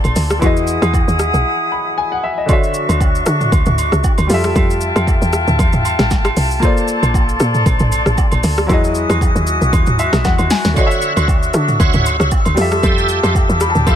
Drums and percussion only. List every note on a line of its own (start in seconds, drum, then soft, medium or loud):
0.04 high agogo medium
0.04 shaker medium
0.16 open hi-hat medium
0.16 shaker medium
0.30 cross-stick loud
0.30 shaker medium
0.42 kick loud
0.42 high agogo medium
0.42 shaker medium
0.57 shaker medium
0.67 shaker medium
0.82 cross-stick medium
0.82 high agogo medium
0.82 shaker medium
0.94 kick loud
0.94 low woodblock medium
0.94 shaker medium
1.08 shaker medium
1.19 cross-stick medium
1.19 shaker loud
1.34 shaker soft
2.49 kick loud
2.49 high agogo medium
2.49 shaker medium
2.64 shaker soft
2.74 shaker medium
2.89 high agogo medium
2.89 shaker medium
3.01 kick medium
3.01 low woodblock medium
3.01 shaker medium
3.15 shaker soft
3.26 cross-stick medium
3.26 shaker loud
3.41 mid tom medium
3.41 shaker soft
3.52 kick loud
3.52 high agogo medium
3.52 shaker medium
3.66 mid tom medium
3.66 shaker medium
3.78 high agogo medium
3.78 shaker loud
3.92 cross-stick medium
3.92 shaker medium
4.04 kick loud
4.04 low woodblock medium
4.04 shaker medium
4.18 high agogo medium
4.18 shaker medium
4.30 open hi-hat medium
4.30 shaker medium
4.44 cross-stick loud
4.44 shaker medium
4.56 kick loud
4.56 high agogo medium
4.56 shaker medium
4.70 shaker medium
4.81 shaker medium
4.96 cross-stick medium
4.96 high agogo medium
4.96 shaker medium
5.07 kick loud
5.07 low woodblock medium
5.07 shaker medium
5.22 shaker medium
5.33 cross-stick medium
5.33 shaker loud
5.48 mid tom medium
5.48 shaker soft
5.59 kick loud
5.59 high agogo medium
5.59 shaker medium
5.73 mid tom medium
5.73 shaker medium
5.85 high agogo medium
5.85 shaker loud
5.99 cross-stick medium
5.99 snare medium
5.99 shaker medium
6.11 kick loud
6.11 snare medium
6.11 low woodblock medium
6.11 shaker medium
6.25 cross-stick loud
6.25 high agogo medium
6.25 shaker medium
6.37 open hi-hat medium
6.37 shaker medium
6.51 shaker medium
6.63 kick loud
6.63 high agogo medium
6.63 shaker medium
6.77 shaker medium
6.88 shaker medium
7.03 high agogo medium
7.03 shaker medium
7.14 kick medium
7.14 low woodblock medium
7.14 shaker medium
7.29 shaker medium
7.40 cross-stick medium
7.40 shaker loud
7.54 mid tom medium
7.54 shaker soft
7.66 kick loud
7.66 high agogo medium
7.66 shaker medium
7.79 mid tom medium
7.79 shaker medium
7.92 high agogo medium
7.92 shaker loud
8.06 cross-stick medium
8.06 shaker medium
8.18 kick loud
8.18 low woodblock medium
8.18 shaker medium
8.32 high agogo medium
8.32 shaker medium
8.43 open hi-hat medium
8.43 shaker medium
8.58 cross-stick loud
8.58 shaker medium
8.69 kick loud
8.69 high agogo medium
8.69 shaker medium
8.84 shaker medium
8.95 shaker medium
9.10 cross-stick medium
9.10 high agogo medium
9.10 shaker medium
9.21 kick loud
9.21 low woodblock medium
9.21 shaker medium
9.36 shaker medium
9.47 shaker loud
9.62 shaker soft
9.73 kick loud
9.73 high agogo medium
9.73 shaker medium
9.87 mid tom medium
9.87 shaker medium
9.99 high agogo medium
9.99 shaker loud
10.13 cross-stick medium
10.13 snare medium
10.13 shaker medium
10.25 kick loud
10.25 snare medium
10.25 low woodblock medium
10.25 shaker medium
10.38 high agogo medium
10.38 shaker medium
10.50 snare loud
10.50 open hi-hat medium
10.50 shaker medium
10.65 snare loud
10.65 shaker medium
10.76 kick loud
10.76 high agogo medium
10.76 shaker medium
10.91 shaker medium
11.02 shaker medium
11.17 high agogo medium
11.17 shaker medium
11.28 kick loud
11.28 low woodblock medium
11.28 shaker medium
11.43 shaker medium
11.54 cross-stick medium
11.54 shaker loud
11.68 mid tom medium
11.68 shaker soft
11.80 kick loud
11.80 high agogo medium
11.80 shaker medium
11.93 mid tom medium
11.93 shaker medium
12.06 high agogo medium
12.06 shaker loud
12.20 cross-stick medium
12.20 shaker medium
12.31 kick loud
12.31 low woodblock medium
12.31 shaker medium
12.45 high agogo medium
12.45 shaker medium
12.57 open hi-hat medium
12.57 shaker medium
12.72 cross-stick loud
12.72 shaker medium
12.83 kick loud
12.83 high agogo medium
12.83 shaker medium
12.98 shaker soft
13.09 shaker medium
13.23 cross-stick medium
13.23 high agogo medium
13.23 shaker medium
13.35 kick loud
13.35 low woodblock medium
13.35 shaker medium
13.50 shaker soft
13.60 cross-stick medium
13.60 shaker loud
13.75 mid tom medium
13.75 shaker soft
13.87 kick loud
13.87 high agogo medium
13.87 shaker medium